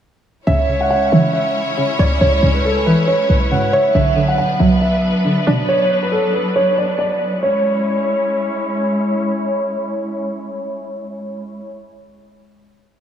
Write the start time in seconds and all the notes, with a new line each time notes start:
0.47 C#2 C#3 G#3 C#4 E4 C#5 E5
0.69 C#3
0.81 F#5
0.90 F#5
1.12 C#3 E3 E5
1.33 E5
1.78 C#3
1.99 C#2 C#5 D5
2.21 C#2 C#3 C#5
2.43 C#2 C#3
2.54 B4
2.65 A4
2.86 E3 B4
3.08 C#5
3.29 B1 B4
3.51 G#2 C#3 F#5
3.73 C#5 E5
3.95 B1 D3 F#3 B3 D4 B4 E5
4.16 D3
4.28 F#5
4.38 B2 F#5
4.59 B1 F#3 E5
4.81 E5
5.25 D3
5.47 B2 D4 D5
5.69 C#5
6.03 B4
6.12 A4
6.34 B4
6.56 C#5
6.78 D5
6.98 D5
7.43 G#3 C#4 E4 C#5